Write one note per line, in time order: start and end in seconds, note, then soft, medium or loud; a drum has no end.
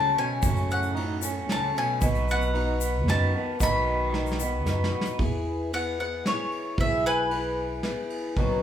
0.00 0.15 C#2 medium
0.00 0.15 C#3 medium
0.00 0.44 F#3 medium
0.00 0.43 A3 medium
0.00 0.14 C#4 medium
0.00 0.44 C#4 medium
0.00 0.46 F#4 medium
0.00 0.17 A5 medium
0.15 0.42 B2 medium
0.15 0.40 C#4 medium
0.15 0.42 G#5 medium
0.43 1.48 F#2 medium
0.43 0.96 F#2 medium
0.43 0.97 C#3 medium
0.43 0.96 F#3 medium
0.43 0.96 A3 medium
0.43 0.97 C#4 medium
0.43 0.99 F#4 medium
0.43 kick medium
0.43 ride soft
0.43 shaker medium
0.56 shaker soft
0.70 1.45 A2 medium
0.70 1.46 F#5 medium
0.70 shaker soft
0.83 shaker soft
0.95 1.23 F#3 soft
0.95 1.23 A3 medium
0.95 1.21 D#4 medium
0.95 ride medium
0.99 1.23 C#4 medium
0.99 1.21 F#4 medium
1.22 1.48 F#3 soft
1.22 1.48 A3 soft
1.22 1.49 C#4 soft
1.22 1.49 F#4 soft
1.22 shaker medium
1.48 1.73 C#2 medium
1.48 1.75 C#3 medium
1.48 2.01 F#3 medium
1.48 2.02 A3 medium
1.48 2.02 C#4 medium
1.48 2.03 F#4 medium
1.48 snare medium
1.48 ride soft
1.52 1.77 A5 medium
1.75 2.01 B2 medium
1.75 2.01 C#4 medium
1.75 2.01 G#5 medium
1.75 ride soft
2.01 3.07 B1 medium
2.01 2.54 B2 medium
2.01 2.52 F#3 medium
2.01 2.54 B3 medium
2.01 2.54 D#4 medium
2.01 2.55 F#4 medium
2.01 kick medium
2.01 ride soft
2.01 shaker medium
2.15 shaker soft
2.28 3.05 B2 medium
2.28 3.09 F#5 medium
2.28 shaker soft
2.42 shaker soft
2.54 3.06 F#3 soft
2.54 3.08 B3 medium
2.54 3.08 D#4 medium
2.54 3.08 F#4 medium
2.54 ride soft
2.80 3.32 B3 medium
2.80 shaker medium
3.07 3.32 F#2 medium
3.07 3.57 D#3 medium
3.07 3.34 F#3 medium
3.07 3.34 B3 medium
3.07 3.34 D#4 medium
3.07 3.33 F#4 medium
3.07 3.58 A5 medium
3.07 snare medium
3.07 ride soft
3.34 3.59 B3 soft
3.34 3.60 D#4 soft
3.34 3.60 F#4 soft
3.59 4.66 B1 medium
3.59 4.13 B2 medium
3.59 4.89 D#3 medium
3.59 4.12 F#3 medium
3.59 4.13 B3 medium
3.59 4.14 D#4 medium
3.59 4.14 F#4 medium
3.59 4.90 B5 medium
3.59 kick medium
3.59 ride soft
3.59 shaker loud
4.13 4.40 F#3 soft
4.13 4.40 B3 medium
4.13 4.41 D#4 medium
4.13 4.39 F#4 medium
4.13 snare soft
4.27 shaker soft
4.31 snare soft
4.40 4.67 B3 soft
4.40 4.67 D#4 soft
4.40 4.67 F#4 soft
4.40 shaker medium
4.66 4.91 F#2 medium
4.66 5.18 F#3 medium
4.66 5.18 B3 medium
4.66 5.20 D#4 medium
4.66 5.20 F#4 medium
4.66 snare medium
4.66 shaker soft
4.84 snare medium
4.92 5.18 B3 medium
5.01 snare medium
5.06 shaker soft
5.19 6.21 E2 medium
5.19 5.70 E3 medium
5.19 5.73 B3 medium
5.19 5.72 E4 medium
5.19 5.72 G#4 medium
5.19 kick medium
5.19 ride soft
5.71 5.98 E3 soft
5.71 5.99 B3 soft
5.71 5.99 E4 soft
5.71 5.97 G#4 medium
5.71 5.99 F#5 medium
5.71 ride soft
5.98 6.25 B3 soft
5.98 6.26 E4 soft
5.98 6.25 G#4 soft
5.98 6.25 F#5 medium
6.25 6.76 E3 medium
6.25 6.78 B3 medium
6.25 6.78 E4 medium
6.25 6.78 G#4 medium
6.25 6.77 C#5 medium
6.25 snare medium
6.25 ride soft
6.52 ride soft
6.77 7.80 B1 medium
6.77 7.30 E3 medium
6.77 7.32 B3 medium
6.77 7.31 E4 medium
6.77 7.32 G#4 medium
6.77 7.05 E5 medium
6.77 kick medium
6.77 ride soft
7.06 8.60 B4 medium
7.06 8.60 G#5 medium
7.31 7.82 E3 soft
7.31 7.83 B3 medium
7.31 7.83 E4 medium
7.31 7.84 G#4 medium
7.31 ride soft
7.83 8.37 E3 medium
7.83 8.38 B3 medium
7.83 8.37 E4 medium
7.83 8.38 G#4 medium
7.83 snare medium
7.83 ride soft
8.10 ride soft
8.36 8.62 B1 medium
8.36 8.62 B2 medium
8.36 8.62 D#3 medium
8.36 8.62 F#3 medium
8.36 8.62 B3 medium
8.36 8.62 C#4 medium
8.36 8.62 F#4 medium
8.36 kick medium
8.36 ride soft